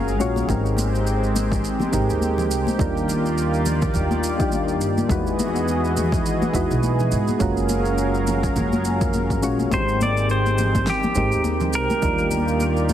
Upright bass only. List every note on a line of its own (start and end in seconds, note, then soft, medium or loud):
0.00 0.20 F#1 medium
0.20 0.43 A#1 medium
0.49 1.59 G#1 medium
1.93 2.06 G#1 medium
2.10 2.51 D#2 medium
2.51 2.63 C2 medium
2.79 3.90 D#2 medium
3.95 4.81 D#2 medium
4.81 5.04 G2 medium
5.10 6.21 E2 medium
6.54 6.67 E2 medium
6.71 7.14 B1 medium
7.12 7.25 G#2 medium
7.40 8.51 F#1 medium
8.57 9.43 F#1 medium
9.43 9.66 A#1 medium
9.72 10.82 G#1 medium
11.16 11.29 G#1 medium
11.33 11.75 D#2 medium
11.75 11.87 C2 medium
12.03 12.93 D#2 medium